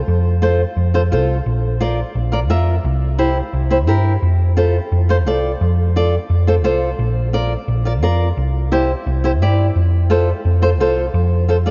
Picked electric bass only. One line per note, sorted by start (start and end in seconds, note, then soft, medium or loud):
0.08 0.63 F2 medium
0.77 1.13 F2 medium
1.11 1.39 C2 loud
1.46 2.01 A#1 medium
2.15 2.50 A#1 medium
2.50 2.78 F2 loud
2.84 3.40 C2 loud
3.53 3.88 C2 medium
3.88 4.16 G2 loud
4.22 4.78 F2 medium
4.92 5.26 F2 medium
5.26 5.54 C2 medium
5.61 6.16 F2 medium
6.30 6.65 F2 medium
6.65 6.92 C2 medium
6.99 7.55 A#1 medium
7.68 8.02 A#1 medium
8.02 8.30 F2 loud
8.37 8.93 C2 medium
9.07 9.41 C2 medium
9.41 9.69 G2 loud
9.76 10.31 F2 medium
10.45 10.80 F2 medium
10.80 11.08 C2 loud
11.14 11.70 F2 medium